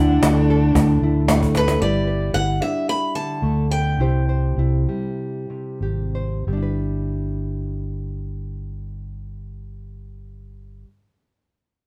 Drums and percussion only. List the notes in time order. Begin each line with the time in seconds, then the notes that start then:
0.23 cajon slap
0.50 cajon slap
0.75 cajon bass, cajon slap
0.89 cajon slap
1.28 cajon slap
1.43 cajon bass
1.55 cajon slap
1.68 cajon slap